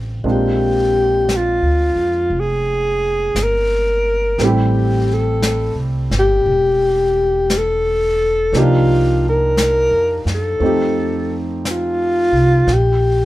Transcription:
0.00 0.21 A1 medium
0.00 0.25 G3 soft
0.00 0.25 A3 soft
0.00 0.23 C4 soft
0.00 0.24 D4 soft
0.00 0.25 F4 soft
0.24 1.58 A#1 medium
0.24 4.38 G#3 soft
0.24 4.39 A#3 soft
0.24 4.39 C4 soft
0.24 4.39 D4 soft
0.24 4.39 F4 soft
0.24 brush sweep soft
0.31 1.38 G4 medium
1.29 brush sweep soft
1.29 snare soft
1.29 hi-hat pedal soft
1.37 2.41 F4 medium
1.62 1.94 D2 soft
1.96 2.28 F2 medium
2.30 3.30 F1 medium
2.30 brush sweep soft
2.40 3.45 G#4 medium
3.35 4.34 G1 medium
3.35 brush sweep soft
3.35 snare soft
3.35 hi-hat pedal soft
3.43 4.46 A#4 medium
4.38 5.72 A1 medium
4.38 8.53 G3 soft
4.38 8.54 A3 soft
4.38 8.54 C4 soft
4.38 brush sweep soft
4.38 snare soft
4.43 8.55 E4 soft
4.43 8.56 G4 medium
4.43 5.15 G4 medium
5.14 5.78 A4 medium
5.42 brush sweep soft
5.42 snare soft
5.42 hi-hat pedal soft
5.75 6.08 C2 soft
6.11 6.43 G1 medium
6.11 snare soft
6.18 7.59 G4 medium
6.46 8.49 E1 medium
6.46 brush sweep soft
7.50 brush sweep soft
7.50 snare soft
7.50 hi-hat pedal soft
7.58 8.61 A4 medium
8.53 9.87 C2 medium
8.53 10.58 F3 soft
8.53 10.61 A#3 soft
8.53 10.62 D4 soft
8.53 brush sweep soft
8.53 snare soft
8.57 10.62 D#4 soft
8.57 9.25 F4 medium
8.57 10.63 G4 medium
9.29 10.26 A#4 medium
9.57 brush sweep soft
9.57 snare soft
9.57 hi-hat pedal soft
9.91 10.23 F2 soft
10.25 10.58 F#2 medium
10.25 snare soft
10.35 11.47 A4 medium
10.60 12.30 F2 medium
10.60 12.68 F3 soft
10.60 12.69 A3 soft
10.60 12.69 C4 soft
10.60 12.70 D#4 soft
10.60 brush sweep soft
10.66 12.71 G4 soft
11.65 brush sweep soft
11.65 snare soft
11.65 hi-hat pedal soft
11.70 12.75 F4 medium
12.32 12.65 C2 medium
12.67 13.25 A#1 medium
12.67 brush sweep soft
12.67 snare soft
12.73 13.25 G4 medium

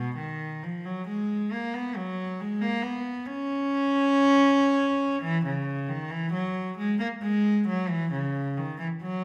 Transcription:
0.00 0.17 B2 medium
0.16 0.61 D#3 medium
0.63 0.85 F3 medium
0.85 1.07 F#3 medium
1.07 1.51 G#3 medium
1.52 1.74 A#3 medium
1.74 1.96 B3 medium
1.96 2.39 F#3 medium
2.41 2.61 G#3 medium
2.61 2.82 A#3 loud
2.82 3.25 B3 medium
3.26 5.23 C#4 loud
5.22 5.44 E3 loud
5.45 5.88 C#3 medium
5.88 6.11 D#3 medium
6.10 6.33 E3 medium
6.33 6.77 F#3 medium
6.78 7.00 G#3 medium
6.99 7.07 A#3 medium
7.22 7.66 G#3 loud
7.67 7.89 F#3 medium
7.89 8.12 E3 loud
8.12 8.56 C#3 medium
8.57 8.80 D#3 medium
8.79 8.87 E3 medium
9.02 9.24 F#3 medium

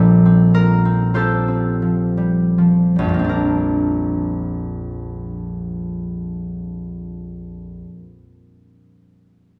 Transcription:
0.00 2.97 A#1 medium
0.00 3.29 A#2 loud
0.00 1.81 F3 medium
0.00 2.16 G3 medium
0.00 2.70 A#3 medium
0.00 0.24 C4 medium
0.00 1.58 D4 medium
0.00 0.53 F4 medium
0.00 1.15 A4 loud
0.00 0.53 A#4 loud
0.00 3.29 D5 loud
0.26 0.84 C4 medium
0.54 1.13 F4 medium
0.54 3.28 A#4 loud
0.85 1.47 C4 medium
1.14 5.04 F4 medium
1.14 3.36 G4 medium
1.14 3.36 A4 medium
1.14 5.05 C5 loud
1.48 3.18 C4 medium
1.82 2.57 F3 medium
2.17 2.95 G3 medium
2.58 3.08 F3 medium
2.96 7.81 A#1 medium
2.96 3.36 G3 soft
3.04 7.86 F2 medium
3.09 7.91 F3 medium
3.14 7.96 A#3 medium
3.19 8.01 C4 medium
3.24 8.07 D4 medium
3.29 8.11 A#4 medium

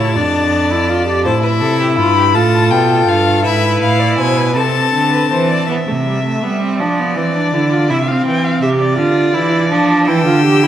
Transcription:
0.00 0.17 A2 medium
0.00 0.18 E4 medium
0.00 0.15 C#5 medium
0.00 1.21 A5 medium
0.16 1.27 F2 medium
0.16 0.73 D4 medium
0.16 1.23 D5 medium
0.71 0.91 E4 medium
0.89 1.07 F4 medium
1.07 1.27 G4 medium
1.25 1.63 A2 medium
1.25 2.37 E4 medium
1.25 1.33 C5 medium
1.25 1.42 A5 medium
1.43 1.50 B4 medium
1.43 1.96 E5 medium
1.61 1.99 C3 medium
1.61 1.79 A4 medium
1.80 1.88 G4 medium
1.98 2.35 G2 medium
1.98 2.16 F4 medium
1.98 2.36 B5 medium
2.17 2.24 G4 medium
2.34 2.72 A2 medium
2.34 3.44 F4 medium
2.34 3.46 A4 medium
2.34 2.72 A5 loud
2.71 3.08 B2 medium
2.71 3.10 G5 medium
3.08 3.46 G2 medium
3.08 3.44 F5 medium
3.44 3.81 G#2 medium
3.44 4.54 E4 medium
3.44 4.01 B4 medium
3.44 3.81 E5 medium
3.81 4.18 A2 medium
3.81 4.18 F5 medium
4.00 4.20 D5 medium
4.18 4.58 B2 medium
4.18 4.39 C5 medium
4.18 4.56 G#5 medium
4.37 4.57 B4 medium
4.56 4.93 C3 medium
4.56 5.67 C4 medium
4.56 5.12 A4 medium
4.56 5.67 A5 loud
4.94 5.30 D3 medium
5.13 5.30 B4 medium
5.31 5.68 E3 medium
5.31 5.49 C5 medium
5.51 5.68 D5 medium
5.69 5.76 E3 medium
5.69 5.77 B3 medium
5.69 6.76 E5 medium
5.87 6.42 C3 medium
5.87 5.95 A3 medium
6.06 6.24 G3 medium
6.25 6.45 A3 medium
6.43 6.81 G3 medium
6.43 6.61 B3 medium
6.62 6.82 C4 medium
6.80 7.18 F3 medium
6.80 7.00 D4 medium
6.80 7.91 D5 medium
6.99 7.19 B3 medium
7.16 7.53 E3 medium
7.16 7.36 C4 medium
7.35 7.55 D4 medium
7.53 7.91 D3 medium
7.53 7.74 E4 medium
7.72 7.89 F4 medium
7.90 8.26 C3 medium
7.90 7.97 E4 medium
7.90 8.09 E5 medium
8.08 8.64 C4 medium
8.08 8.26 F5 medium
8.26 8.62 E3 medium
8.26 8.46 G5 medium
8.44 8.61 F5 medium
8.62 9.00 C3 medium
8.62 8.98 G4 medium
8.62 8.69 E5 medium
8.80 10.05 D5 medium
8.98 9.34 D3 medium
8.98 9.36 F4 medium
9.34 9.73 E3 medium
9.34 9.70 E4 medium
9.71 10.09 F3 medium
9.71 10.09 D4 medium
10.07 10.26 E3 medium
10.07 10.25 E4 medium
10.07 10.67 G5 medium
10.07 10.67 E6 medium
10.26 10.67 D3 medium
10.26 10.44 F4 medium
10.44 10.64 G4 medium
10.63 10.67 E4 medium

